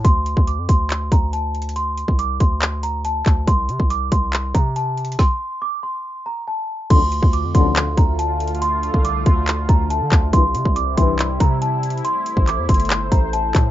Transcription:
<<
  \new Staff \with { instrumentName = "Celesta" } { \time 4/4 \key d \minor \tempo 4 = 140 c'''4 d'''8 c'''4 bes''8 a''4 | c'''4 d'''8 c'''4 bes''8 a''4 | c'''4 d'''8 c'''4 bes''8 a''4 | c'''4 d'''8 c'''4 bes''8 a''4 |
c'''4 d'''8 c'''4 bes''8 a''4 | c'''4 d'''8 c'''4 bes''8 a''4 | c'''4 d'''8 c'''4 bes''8 a''4 | c'''4 d'''8 c'''4 bes''8 a''4 | }
  \new Staff \with { instrumentName = "Analog synth pad" } { \time 4/4 \key d \minor r1 | r1 | r1 | r1 |
<d a f'>1~ | <d a f'>1 | <c g e'>1 | <a c''>1 | }
  \new Staff \with { instrumentName = "Brass ensemble" } { \clef bass \time 4/4 \key d \minor r1 | r1 | r1 | r1 |
<a,, f, d>16 r4 r16 <a,, f, d>8. r4. r16 | r1 | <c, g, e>16 r4 r16 <c, g, e>8. r4. r16 | r1 | }
  \new Staff \with { instrumentName = "808-style bass" } { \clef bass \time 4/4 \key d \minor d,8. d,8 f,16 d,4 d,4.~ | d,8. c,8. d,2 d,8 | c,8 c16 c,8. c,4 c4. | r1 |
d,8. d,8 f,16 d,4 d,4.~ | d,8. c,8. d,4 d,8. d16 d,8 | c,8 c16 c,8. c,4 c4. | r8. a,,8 e,16 g,,4 a,,4 a,8 | }
  \new DrumStaff \with { instrumentName = "Drums" } \drummode { \time 4/4 <hh bd>8 hh16 bd16 hh8 <hh bd>8 <hc hh>8 <hh bd>8 \tuplet 3/2 { hh16 r16 r16 hh16 hh16 hh16 } | hh8 hh16 bd16 hh8 <hh bd>8 <hc hh>8 hh8 hh8 <hc hh bd>8 | <hh bd>8 hh16 bd16 hh8 <hh bd>8 <hc hh>8 <hh bd>8 \tuplet 3/2 { hh16 r16 r16 hh16 hh16 hh16 } | <bd sn>4 r4 r4 r4 |
<cymc hh bd>8 hh16 bd16 hh8 <hh bd>8 <hc hh>8 <hh bd>8 \tuplet 3/2 { hh16 r16 r16 hh16 hh16 hh16 } | hh8 hh16 bd16 hh8 <hh bd>8 <hc hh>8 <hh bd>8 hh8 <hc hh bd>8 | <hh bd>8 hh16 bd16 hh8 <hh bd>8 <hc hh>8 <hh bd>8 \tuplet 3/2 { hh16 r16 r16 hh16 hh16 hh16 } | hh8 hh16 bd16 <hc hh>8 <hh bd>32 hh32 hh32 hh32 <hc hh>8 <hh bd>8 hh8 <hc hh bd>8 | }
>>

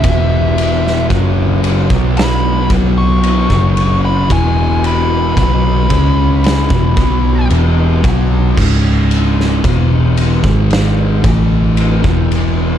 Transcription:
<<
  \new Staff \with { instrumentName = "Lead electric guitar" } { \time 4/4 \key cis \minor \tempo 4 = 56 e''4 r4 b''8 r16 cis'''4 b''16 | gis''8 b''8 b''2 r4 | r1 | }
  \new Staff \with { instrumentName = "Distorted electric guitar" } { \clef bass \time 4/4 \key cis \minor <e, b, e>4 <fis, cis fis>8. <b, fis b>8. <b, fis b>8. <fis, cis fis>8. | <e, b, e>4 <b, fis b>8 <cis gis cis'>8. <e, b,>16 <b, fis b>8 <e, b, e>8 <b, fis b>8 | <cis, gis, cis>4 <e, b, e>8. <gis, dis gis>8. <a, e a>8. <e, b, e>8. | }
  \new Staff \with { instrumentName = "Distorted electric guitar" } { \clef bass \time 4/4 \key cis \minor <e, b, e>4 <fis, cis fis>8. <b, fis b>8. <b, fis b>8. <fis, cis fis>8. | <e, b, e>4 <b, fis b>8 <cis gis cis'>8. <e, b,>16 <b, fis b>8 <e, b, e>8 <b, fis b>8 | <cis, gis, cis>4 <e, b, e>8. <gis, dis gis>8. <a, e a>8. <e, b, e>8. | }
  \new Staff \with { instrumentName = "Distorted electric guitar" } { \clef bass \time 4/4 \key cis \minor <e, b, e>4 <fis, cis fis>8. <b, fis b>8. <b, fis b>8. <fis, cis fis>8. | <e, b, e>4 <b, fis b>8 <cis gis cis'>8. <e, b,>16 <b, fis b>8 <e, b, e>8 <b, fis b>8 | r1 | }
  \new Staff \with { instrumentName = "Picked electric bass" } { \clef bass \time 4/4 \key cis \minor e,,4 fis,,8. b,,8. b,,8. fis,,8. | e,,4 b,,8 cis,8. e,,16 b,,8 e,,8 b,,8 | cis,,4 e,,8. gis,,8. a,,8. e,,8. | }
  \new DrumStaff \with { instrumentName = "Drums" } \drummode { \time 4/4 <bd cymr>8 cymr16 sn16 <bd cymr>8 cymr16 bd16 <cymr sn>8 <bd cymr>8 cymr16 bd16 cymr8 | <bd cymr>8 cymr8 <bd cymr>8 <bd cymr>8 <cymr sn>16 bd16 <bd cymr>8 cymr8 <bd cymr>8 | <cymc bd>8 cymr16 sn16 <bd cymr>8 cymr16 bd16 <cymr sn>8 <bd cymr>8 cymr16 bd16 cymr8 | }
>>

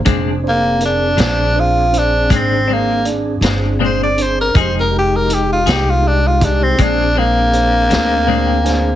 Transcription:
<<
  \new Staff \with { instrumentName = "Grand piano" } { \time 12/8 \key bes \mixolydian \tempo 4. = 54 << { r1. | r1 r4 f''16 g''16 aes''8 | } \\ { <d' aes' c''>8 <d' aes' c''>8 <d' aes' bes'>8 <d' aes' c''>8 <d' aes' c''>8 <d' aes' c''>8 <d' aes' c''>8 <d' aes' c''>8 <d' aes' d''>8 <d' aes' c''>8 <d' aes' c''>8 <d' aes' c''>8 | <ees' g' aes'>8 <ees' g' aes'>8 <ees' g' aes'>8 <ees' g' aes'>8 <ees' g' aes'>8 <ees' g' aes'>8 <d' aes' c''>8 <d' aes' c''>8 <d' aes' c''>8 <d' aes' c''>8 <d' aes' c''>8 <d' aes' c''>8 | } >> }
  \new Staff \with { instrumentName = "Tenor saxophone" } { \time 12/8 \key bes \mixolydian r8 bes8 d'4 f'8 d'8 c'8 bes8 r4 c''16 d''16 c''16 bes'16 | c''16 bes'16 g'16 bes'16 g'16 f'16 g'16 f'16 d'16 f'16 d'16 c'16 d'8 bes2~ bes8 | }
  \new Staff \with { instrumentName = "Tonewheel organ" } { \time 12/8 \key bes \mixolydian <c' d' aes'>1. | <aes ees' g'>2. <c' d' aes'>2. | }
  \new Staff \with { instrumentName = "Clean electric guitar" } { \time 12/8 \key bes \mixolydian <bes, aes c' d'>8 r4 <aes c' d'>8 r4 <bes, aes c' d'>8 <aes c' d'>8 r8 <aes c' d'>8 <bes, aes c' d'>8 r8 | <f c' ees' aes'>8 r4 <c' ees' aes'>8 r4 <bes, aes c' d'>8 <aes c' d'>8 r8 <aes c' d'>8 <bes, aes c' d'>8 r8 | }
  \new Staff \with { instrumentName = "Upright bass" } { \clef bass \time 12/8 \key bes \mixolydian f,,4. bes,,4. aes,,4. g,,4. | f,,4. c,4. bes,,4. d,4. | }
  \new DrumStaff \with { instrumentName = "Drums" } \drummode { \time 12/8 <hh bd>4 hh8 <hh sn>4 hh8 <hh bd>4 hh8 <hh sn>4 hh8 | <hh bd>4 hh8 <hh sn>4 <hh bd>8 <hh bd>4 hh8 <hh sn>4 <hh sn>8 | }
>>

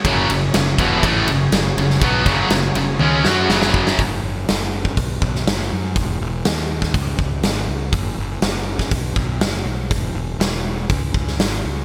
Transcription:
<<
  \new Staff \with { instrumentName = "Tonewheel organ" } { \time 4/4 \key b \major \tempo 4 = 122 <fis cis' gis'>1~ | <fis cis' gis'>1 | r1 | r1 |
r1 | r1 | }
  \new Staff \with { instrumentName = "Distorted electric guitar" } { \clef bass \time 4/4 \key b \major <fis, cis fis>8 <fis, cis>8 <fis, cis>8 <e, b, e>8 <a, e a>8 <fis, cis>8 <fis, cis>8 <fis, cis>8 | <b, fis b>8 <fis, cis fis>8 <fis, cis>8 <fis, cis>8 <cis gis cis'>8 <fis cis' fis'>8 <fis, cis fis>4 | r1 | r1 |
r1 | r1 | }
  \new Staff \with { instrumentName = "Distorted electric guitar" } { \clef bass \time 4/4 \key b \major <fis, cis fis>8 <fis, cis>8 <fis, cis>8 <e, b, e>8 <a, e a>8 <fis, cis>8 <fis, cis>8 <fis, cis>8 | <b, fis b>8 <fis, cis fis>8 <fis, cis>8 <fis, cis>8 <cis gis cis'>8 <fis cis' fis'>8 <fis, cis fis>4 | r1 | r1 |
r1 | r1 | }
  \new Staff \with { instrumentName = "Distorted electric guitar" } { \clef bass \time 4/4 \key b \major <fis, cis fis>8 <fis, cis>8 <fis, cis>8 <e, b, e>8 <a, e a>8 <fis, cis>8 <fis, cis>8 <fis, cis>8 | <b, fis b>8 <fis, cis fis>8 <fis, cis>8 <fis, cis>8 <cis gis cis'>8 <fis cis' fis'>8 <fis, cis fis>4 | r1 | r1 |
r1 | r1 | }
  \new Staff \with { instrumentName = "Fingered electric bass" } { \clef bass \time 4/4 \key b \major fis,,8 fis,,8 fis,,8 e,,8 a,,8 fis,,8 fis,,8 fis,,8 | b,,8 fis,,8 fis,,8 fis,,8 cis,8 fis,8 fis,,4 | fis,,8 fis,,8 fis,,4 b,,8 b,,8 fis,,8 fis,8 | e,,8 e,,8 dis,4 cis,8 cis,8 gis,,8 cis,8 |
fis,,8 fis,,8 fis,,4 b,,8 b,,8 fis,,8 b,,8 | e,,8 e,,8 e,,4 cis,8 cis,8 gis,,8 cis,8 | }
  \new DrumStaff \with { instrumentName = "Drums" } \drummode { \time 4/4 <bd cymr>8 cymr8 <cymr sn>8 <bd cymr>8 <bd cymr>8 cymr8 <cymr sn>8 cymr16 sn16 | <bd cymr>8 <bd cymr sn>8 <cymr sn>8 cymr8 tommh8 sn8 sn16 sn16 bd16 sn16 | <hho bd>4 <hho sn>8. bd16 <hho bd>8 bd16 sn16 <hho sn>4 | <hho bd>4 <hho sn>8. <bd sn>16 <hho bd>8 bd8 <hho sn>4 |
<hho bd>4 <hho sn>8. <bd sn>16 <hho bd>8 bd8 <hho sn>4 | <hho bd>4 <hho sn>4 <hho bd>8 bd16 sn16 <hho sn>4 | }
>>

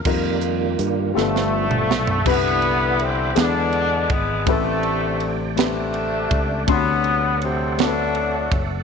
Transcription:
<<
  \new Staff \with { instrumentName = "Tonewheel organ" } { \time 6/8 \key f \mixolydian \tempo 4. = 54 r2. | \key c \major <b' b''>4. gis''4. | g''2. | <a' fis''>2. | }
  \new Staff \with { instrumentName = "Tonewheel organ" } { \time 6/8 \key f \mixolydian <ees g bes>4. <f a b>8 r4 | \key c \major <e'' d'''>2. | d''2.~ | d''2. | }
  \new Staff \with { instrumentName = "Grand piano" } { \time 6/8 \key f \mixolydian <g ees' f' bes'>4 r8 <g a b f' a'>4 r8 | \key c \major <g b d' e' b'>4 r8 <gis b d' e' bes' b'>4 r8 | <a c' d' g' b'>4 r8 <a c' d' g' b'>4 r8 | <c a d' fis' c'''>4 r8 <a c' d' fis' a' b'>4 r8 | }
  \new Staff \with { instrumentName = "Grand piano" } { \clef bass \time 6/8 \key f \mixolydian r4. g,4. | \key c \major c4. e4. | a,4. r4. | d4. r4. | }
  \new Staff \with { instrumentName = "French horn section" } { \time 6/8 \key f \mixolydian << { <g f'>2. | \key c \major r2. | r2. | r2. | } \\ { <bes ees'>4. <a b>4. | r2. | r2. | r2. | } >> }
  \new Staff \with { instrumentName = "Horn section" } { \clef bass \time 6/8 \key f \mixolydian << { r4. a4. | \key c \major b4 <c c'>8 <d d'>4 b8 | a4 r8 <d a>4. | b4 <c c'>8 <d d'>4 r8 | } \\ { r4. <d f>4. | <d e>4. <gis b>4. | <c d>4. <c d'>4. | fis4. <fis a>4. | } >> }
  \new Staff \with { instrumentName = "Fingered electric bass" } { \clef bass \time 6/8 \key f \mixolydian f,4 g,8 g,,4 b,,8 | \key c \major c,4. e,4 gis,,8 | a,,2~ a,,8 des,8 | d,2~ d,8 fis,,8 | }
  \new DrumStaff \with { instrumentName = "Drums" } \drummode { \time 6/8 <cymc bd>8 hh8 hh8 sn16 sn8 toml16 sn16 tomfh16 | <cymc bd>8 cymr8 cymr8 <cymr sn>8 cymr8 <bd cymr>8 | <bd cymr>8 cymr8 cymr8 <cymr sn>8 cymr8 <bd cymr>8 | <bd cymr>8 cymr8 cymr8 <cymr sn>8 cymr8 <bd cymr>8 | }
>>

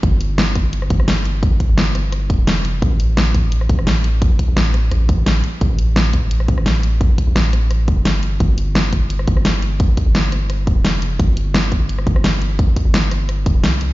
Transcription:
<<
  \new Staff \with { instrumentName = "808-style bass" } { \clef bass \time 4/4 \key a \phrygian \tempo 4 = 172 g,,2~ g,,8 g,,4.~ | g,,16 r8 g,,4.~ g,,16 d,,8 f,,4 | a,,2~ a,,8 a,,4.~ | a,,16 r8 a,,4~ a,,16 a,,4. r8 |
a,,2~ a,,8 a,,4.~ | a,,16 r8 a,,4.~ a,,16 e,,8 g,,4 | g,,2~ g,,8 g,,4.~ | g,,16 r8 g,,4.~ g,,16 d,,8 f,,4 |
g,,2~ g,,8 g,,4.~ | g,,16 r8 g,,4.~ g,,16 d,,8 c,4 | }
  \new DrumStaff \with { instrumentName = "Drums" } \drummode { \time 4/4 <hh bd>8 hh8 <hh sn>8 <hh bd>8 hh16 ss16 <hh bd>16 ss16 <hh sn>8 hh8 | <hh bd>8 <hh bd>8 <hh sn>8 <hh ss>8 <hh ss>8 <hh bd>8 <hh sn>8 hh8 | <hh bd>8 hh8 <hh sn>8 <hh bd>8 hh16 ss16 <hh bd>16 ss16 <hh sn>8 hh8 | <hh bd>8 <hh bd>8 <hh sn>8 <hh ss>8 <hh ss>8 <hh bd>8 <hh sn>8 hh8 |
<hh bd>8 hh8 <hh sn>8 <hh bd>8 hh16 ss16 <hh bd>16 ss16 <hh sn>8 hh8 | <hh bd>8 <hh bd>8 <hh sn>8 <hh ss>8 <hh ss>8 <hh bd>8 <hh sn>8 hh8 | <hh bd>8 hh8 <hh sn>8 <hh bd>8 hh16 ss16 <hh bd>16 ss16 <hh sn>8 hh8 | <hh bd>8 <hh bd>8 <hh sn>8 <hh ss>8 <hh ss>8 <hh bd>8 <hh sn>8 hh8 |
<hh bd>8 hh8 <hh sn>8 <hh bd>8 hh16 ss16 <hh bd>16 ss16 <hh sn>8 hh8 | <hh bd>8 <hh bd>8 <hh sn>8 <hh ss>8 <hh ss>8 <hh bd>8 <hh sn>8 hh8 | }
>>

